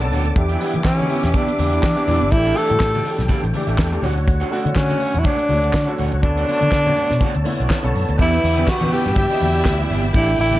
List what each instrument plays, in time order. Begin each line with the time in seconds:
Already playing: fingered electric bass B1, grand piano G#4 A4, tonewheel organ A4 A5 D6
0.00 grand piano D3 B3 C#4 A4, muted clean electric guitar stroke, closed hi-hat, muted conga
0.11 fingered electric bass D2, clean electric guitar A3 D4 F#4 C#5, open hi-hat, low conga
0.25 muted clean electric guitar stroke, closed hi-hat
0.35 fingered electric bass E2, grand piano E3 B3 D4 G4, tonewheel organ G4 E5 D6, muted clean electric guitar stroke, kick, closed hi-hat
0.49 clean electric guitar B3 E4 G4 D5, closed hi-hat
0.59 grand piano E3 B3 D4 G4, clean electric guitar B3 E4 G4 E5, open hi-hat
0.73 grand piano D3 E3 B3 G4, fingered electric bass E3, muted clean electric guitar stroke, closed hi-hat, high conga
0.84 fingered electric bass E3, tenor saxophone C#4, muted clean electric guitar stroke, kick, snare, clap, tambourine
0.99 clean electric guitar B3 E4 G4 D5, closed hi-hat, high conga
1.09 clean electric guitar B3 E4 G4 D5, open hi-hat
1.23 fingered electric bass E2, muted clean electric guitar stroke, snare, closed hi-hat, low conga
1.34 clean electric guitar B3 E4 G4 D5, tenor saxophone D4, kick, closed hi-hat, high conga
1.48 muted clean electric guitar stroke, closed hi-hat, muted conga
1.58 fingered electric bass E2, grand piano E3 B3 D4 G4, muted clean electric guitar stroke, open hi-hat, high conga
1.72 clean electric guitar B3 E4 G4 E5, closed hi-hat
1.82 fingered electric bass E3, kick, snare, clap, tambourine, muted conga
1.96 grand piano E3 B3 D4 G4, muted clean electric guitar stroke, closed hi-hat, muted conga
2.06 fingered electric bass E2, clean electric guitar B3 E4 G4 D5, open hi-hat, low conga
2.21 fingered electric bass G1, muted clean electric guitar stroke, closed hi-hat
2.31 fingered electric bass A1, grand piano E3 A3 D4 G4, tenor saxophone E4, tonewheel organ A4 G5, muted clean electric guitar stroke, kick, closed hi-hat
2.45 clean electric guitar D4 G4 A4 D5, closed hi-hat
2.56 grand piano E3 A3 D4 E4, clean electric guitar D4 G4 A4 E5, tenor saxophone A4, open hi-hat
2.70 fingered electric bass A2, grand piano E3 A3 D4 F#4, muted clean electric guitar stroke, closed hi-hat, high conga
2.77 fingered electric bass A2, grand piano G4, kick, snare, clap, tambourine
2.81 muted clean electric guitar stroke
2.94 clean electric guitar D4 G4 A4 D5, closed hi-hat, high conga
3.05 clean electric guitar D4 G4 A4 D5, open hi-hat
3.19 fingered electric bass B1, muted clean electric guitar stroke, snare, closed hi-hat, low conga
3.28 clean electric guitar D4 G4 A4 D5, kick, closed hi-hat, muted conga, high conga
3.43 fingered electric bass A1, muted clean electric guitar stroke, closed hi-hat, muted conga
3.53 grand piano E3 A3 D4 G4, muted clean electric guitar stroke, open hi-hat, high conga
3.67 fingered electric bass A1, clean electric guitar D4 G4 A4 E5, closed hi-hat
3.77 fingered electric bass E2, kick, snare, clap, tambourine
3.92 grand piano E3 A3 D4 G4, muted clean electric guitar stroke, closed hi-hat
4.02 fingered electric bass D2, grand piano D3 A3 C#4 F#4, clean electric guitar A3 D4 F#4 C#5, tonewheel organ C#5 F#5, open hi-hat, low conga
4.16 muted clean electric guitar stroke, closed hi-hat
4.26 muted clean electric guitar stroke, kick, closed hi-hat
4.40 clean electric guitar A3 D4 F#4 C#5, closed hi-hat
4.50 grand piano D3 A3 C#4 F#4, clean electric guitar A3 D4 F#4 D5, open hi-hat
4.64 grand piano D3 A3 C#4 F#4, fingered electric bass D3, muted clean electric guitar stroke, closed hi-hat, high conga
4.75 fingered electric bass D3, tenor saxophone C#4, muted clean electric guitar stroke, kick, snare, clap, tambourine, muted conga
4.89 clean electric guitar A3 D4 F#4 C#5, closed hi-hat, muted conga, high conga
4.99 clean electric guitar A3 D4 F#4 C#5, open hi-hat
5.13 fingered electric bass E2, muted clean electric guitar stroke, closed hi-hat, low conga
5.19 tenor saxophone E4
5.23 clean electric guitar A3 D4 F#4 C#5, tenor saxophone D4, kick, closed hi-hat, high conga
5.38 muted clean electric guitar stroke, closed hi-hat, muted conga
5.48 fingered electric bass D2, grand piano D3 A3 F#4 C#5, muted clean electric guitar stroke, open hi-hat, high conga
5.62 clean electric guitar A3 D4 F#4 D5, closed hi-hat
5.73 fingered electric bass D3, kick, snare, clap, tambourine, muted conga
5.87 grand piano D3 A3 C#4 F#4, muted clean electric guitar stroke, closed hi-hat, muted conga
5.97 fingered electric bass D2, clean electric guitar A3 D4 F#4 C#5, open hi-hat, low conga
6.11 fingered electric bass C#2, muted clean electric guitar stroke, closed hi-hat
6.21 fingered electric bass D2, grand piano D3 B3 C#4 A4, tenor saxophone D4, tonewheel organ C#5 A5, muted clean electric guitar stroke, kick, closed hi-hat, muted conga
6.37 clean electric guitar A3 D4 F#4 C#5, closed hi-hat
6.47 grand piano D3 B3 C#4 A4, clean electric guitar A3 D4 F#4 D5, open hi-hat, high conga
6.60 grand piano D3 B3 A4 C#5, fingered electric bass D3, muted clean electric guitar stroke, closed hi-hat, high conga
6.72 fingered electric bass D3, muted clean electric guitar stroke, kick, snare, clap, tambourine
6.86 clean electric guitar A3 D4 F#4 C#5, closed hi-hat, muted conga, high conga, low conga
6.96 clean electric guitar A3 D4 F#4 C#5, open hi-hat
7.10 fingered electric bass B2, muted clean electric guitar stroke, snare, closed hi-hat, low conga
7.20 clean electric guitar A3 D4 F#4 C#5, kick, closed hi-hat, muted conga, high conga
7.35 fingered electric bass D2, muted clean electric guitar stroke, closed hi-hat, muted conga
7.44 grand piano D3 B3 C#4 E4, muted clean electric guitar stroke, open hi-hat, high conga
7.60 fingered electric bass B1, clean electric guitar A3 D4 F#4 D5, closed hi-hat
7.69 muted clean electric guitar stroke, kick, snare, clap, tambourine, muted conga
7.82 fingered electric bass B1, grand piano D3 B3 C#4 A4, muted clean electric guitar stroke, closed hi-hat
7.95 fingered electric bass F#2, open hi-hat, low conga
8.09 fingered electric bass D2, muted clean electric guitar stroke, closed hi-hat
8.18 fingered electric bass E2, grand piano E3 B3 D4 G4, string section B3 B4, clean electric guitar B3 E4 G4 D5, tenor saxophone E4, tonewheel organ D5 G5 E6, kick, closed hi-hat, muted conga
8.34 muted clean electric guitar stroke, closed hi-hat
8.44 fingered electric bass E2, muted clean electric guitar stroke, open hi-hat, high conga
8.56 grand piano E3 B3 D4 G4, clean electric guitar B3 E4 G4 D5, closed hi-hat, high conga
8.67 tenor saxophone F#4, muted clean electric guitar stroke, kick, snare, clap, tambourine
8.80 grand piano E3 B3 D4 F#4, fingered electric bass E3, clean electric guitar B3 E4 G4 D5, closed hi-hat, high conga, low conga
8.91 grand piano E3 B3 D4 G4, clean electric guitar B3 E4 G4 D5, tenor saxophone G4, open hi-hat
9.06 fingered electric bass G2, muted clean electric guitar stroke, snare, closed hi-hat, low conga
9.15 string section E4 E5, tenor saxophone G4, muted clean electric guitar stroke, kick, closed hi-hat, muted conga, high conga
9.30 clean electric guitar B3 E4 G4 E5, closed hi-hat, muted conga
9.40 fingered electric bass E2, grand piano E3 B3 D4 F#4, muted clean electric guitar stroke, open hi-hat, high conga
9.48 grand piano G4
9.55 muted clean electric guitar stroke, closed hi-hat
9.64 fingered electric bass D2, kick, snare, clap, tambourine
9.79 clean electric guitar B3 E4 G4 D5, closed hi-hat, muted conga
9.90 fingered electric bass G1, clean electric guitar B3 E4 G4 D5, open hi-hat, low conga
10.04 muted clean electric guitar stroke, closed hi-hat
10.12 fingered electric bass A1, grand piano E3 A3 D4 G4, clean electric guitar D4 G4, tenor saxophone E4, string section G4 G5, tonewheel organ A4 G5 D6, kick, closed hi-hat, muted conga
10.16 clean electric guitar A4 D5
10.28 muted clean electric guitar stroke, closed hi-hat
10.38 fingered electric bass A1, tenor saxophone E4, muted clean electric guitar stroke, open hi-hat, high conga
10.51 grand piano E3 A3 D4 G4, clean electric guitar D4 G4 A4 D5, closed hi-hat, high conga